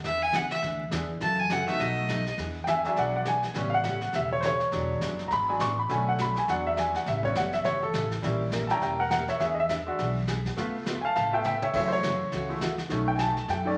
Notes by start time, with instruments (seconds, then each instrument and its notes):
0.04 upright bass E2, steel-string acoustic guitar E3 B3 D4 G#4, fiddle E5, brush sweep, snare
0.22 fiddle G#5
0.33 upright bass C#2, steel-string acoustic guitar E3 B3 D4 G#4, fiddle F#5, snare, hi-hat pedal
0.51 fiddle E5, snare
0.62 upright bass D2, steel-string acoustic guitar E3 B3 D4 G#4, brush sweep, snare
0.91 upright bass E2, steel-string acoustic guitar E3 B3 D4 G#4, upright piano G#3 B3 D4 E4 G#4, snare, hi-hat pedal
1.20 upright bass F#2, steel-string acoustic guitar C#3 E3 A3 C#4 F#4, fiddle A5, brush sweep, snare
1.39 fiddle G#5
1.50 steel-string acoustic guitar C#3 E3 A3 C#4 F#4, fiddle F#5, snare, hi-hat pedal
1.67 upright piano A3 B3 D#4 F#4 A4, fiddle E5, snare
1.79 upright bass B1, steel-string acoustic guitar B2 F#3 A3 D#4 F#4, fiddle D#5, brush sweep, snare
2.09 steel-string acoustic guitar B2 F#3 A3 D#4 F#4, snare, hi-hat pedal
2.26 snare
2.38 upright bass E2, steel-string acoustic guitar E3 B3 D4 G#4, brush sweep, snare
2.64 steel-string acoustic guitar E3, upright piano G5, snare, hi-hat pedal
2.68 steel-string acoustic guitar B3 D4 G#4, upright piano E5 G#5
2.84 upright piano F#3 G#3 D4 E5 G#5, snare
2.96 upright bass B1, steel-string acoustic guitar E3 B3 D4 G#4, upright piano D5 F#5, brush sweep, snare
3.16 upright piano D5 F#5
3.25 steel-string acoustic guitar E3 B3 D4 G#4, upright piano G#5, snare, hi-hat pedal
3.43 snare
3.54 upright bass A1, steel-string acoustic guitar C#3 E3 A3 C#4 G4, upright piano G3 B3 C#4, brush sweep, snare
3.70 upright piano F5
3.74 upright piano F#5
3.84 steel-string acoustic guitar C#3 E3 A3 C#4 G4, snare, hi-hat pedal
4.01 snare
4.13 upright bass E1, steel-string acoustic guitar C#3 E3 A3 C#4 G4, upright piano E5, brush sweep, snare
4.32 upright piano C#5
4.41 steel-string acoustic guitar C#3 E3 A3, upright piano C5, snare, hi-hat pedal
4.45 steel-string acoustic guitar C#4 G4, upright piano C#5
4.60 snare
4.72 upright bass E1, steel-string acoustic guitar E3 B3 D4 G#4, upright piano F#3 G#3 D4, brush sweep, snare
5.01 upright bass F#1, steel-string acoustic guitar E3 B3 D4 G#4, snare, hi-hat pedal
5.19 snare
5.28 upright bass G#1, steel-string acoustic guitar E3 B3 D4, upright piano A#5, brush sweep, snare
5.32 steel-string acoustic guitar G#4, upright piano B5
5.48 upright piano F#3 G#3 D4 G#5
5.60 upright bass A1, steel-string acoustic guitar E3 B3 D4 G#4, upright piano C#6, snare, hi-hat pedal
5.79 upright piano B5
5.89 upright bass B1, steel-string acoustic guitar B2 F#3 A3 D4 F#4, upright piano D3 A3 C#4 G#5, brush sweep, snare
6.09 upright piano F#5
6.18 steel-string acoustic guitar B2 F#3 A3 D4 F#4, upright piano B5, snare, hi-hat pedal
6.36 upright piano G#5, snare
6.48 upright bass E2, steel-string acoustic guitar E3 B3 D4 G#4, upright piano F#3 G#3 D4 F#5, brush sweep, snare
6.67 upright piano E5
6.77 steel-string acoustic guitar E3 B3 D4 G#4, upright piano G#5, snare, hi-hat pedal
6.94 upright piano F#5, snare
7.06 upright bass A1, steel-string acoustic guitar C#3 E3 A3 C#4 G4, upright piano E5, brush sweep, snare
7.23 upright piano G3 B3 C#4 C#5, kick
7.35 upright bass F#1, steel-string acoustic guitar C#3 E3 A3 C#4 G4, upright piano F#5, snare, hi-hat pedal
7.53 upright piano E5, snare
7.64 upright bass G1, steel-string acoustic guitar C#3 E3 A3 C#4 G4, upright piano C#5, brush sweep, snare
7.83 upright piano A4
7.93 upright bass A1, steel-string acoustic guitar C#3 E3 A3 C#4 G4, snare, hi-hat pedal
8.11 snare
8.22 upright bass A#1, steel-string acoustic guitar E3 A#3 C#4 G4 A#4, upright piano G3 C#4 E4, brush sweep, snare
8.52 steel-string acoustic guitar E3 A#3 C#4 G4 A#4, snare, hi-hat pedal
8.67 upright piano G3 C#4 E4 G5 A5, snare
8.71 upright piano A#5
8.81 upright bass E1, steel-string acoustic guitar E3 A#3 C#4 G4 A#4, upright piano G5 A#5, brush sweep, snare
9.00 upright piano A#4 F#5
9.11 steel-string acoustic guitar E3 A#3 C#4 G4 A#4, upright piano A#4 F#5, snare, hi-hat pedal
9.28 upright piano C#5 E5, snare
9.40 upright bass E2, steel-string acoustic guitar E3 B3 D4 G#4, upright piano G#4 E5, brush sweep, snare
9.55 upright piano D#5
9.60 upright piano E5
9.69 steel-string acoustic guitar E3 B3 D4 G#4, snare, hi-hat pedal
9.87 upright piano G#3 D4 F#4
9.98 upright bass B1, steel-string acoustic guitar E3 B3 D4 G#4, brush sweep, snare
10.27 steel-string acoustic guitar E3 B3 D4 G#4, snare, hi-hat pedal
10.45 kick, snare
10.57 upright bass C#2, steel-string acoustic guitar C#3 A3 B3 F4 B4, upright piano A3 B3 F4, brush sweep, snare
10.86 steel-string acoustic guitar C#3 A3 B3 F4 B4, snare, hi-hat pedal
11.01 upright piano F5 G#5
11.05 upright piano A5
11.15 upright bass A1, steel-string acoustic guitar C#3 A3 B3 F4 B4, upright piano F5 A5, brush sweep, snare
11.32 upright piano A3 B3 F4 E5 G5
11.44 steel-string acoustic guitar C#3 A3 B3 F4 B4, upright piano E5 G5, hi-hat pedal, mid tom
11.62 upright piano C#5 E5, mid tom
11.74 upright bass F#2, steel-string acoustic guitar C#3 E3 A3 C#4 F#4, upright piano G#3 A3 E4 C#5 E5, brush sweep, kick, snare, crash
11.88 upright piano C5
11.93 upright piano C#5
12.03 steel-string acoustic guitar C#3 E3 A3 C#4 F#4, snare, hi-hat pedal
12.32 upright bass C#2, steel-string acoustic guitar C#3 E3 A3 C#4 F#4, brush sweep, snare
12.49 upright piano G#3 A3 E4
12.61 steel-string acoustic guitar C#3 E3 A3 C#4 F#4, snare, hi-hat pedal
12.78 snare
12.89 upright bass B1, steel-string acoustic guitar B2 F#3 A3 D#4 F#4, upright piano D#3 A3 C#4, brush sweep, snare
13.08 upright piano G5
13.16 steel-string acoustic guitar B2 F#3, upright piano G#5, snare, hi-hat pedal
13.20 steel-string acoustic guitar A3 D#4 F#4, upright piano A5
13.37 snare
13.48 upright bass F#2, steel-string acoustic guitar B2 F#3 A3 D#4 F#4, upright piano G5, brush sweep, snare
13.65 upright piano D#3 A3 C#4 D5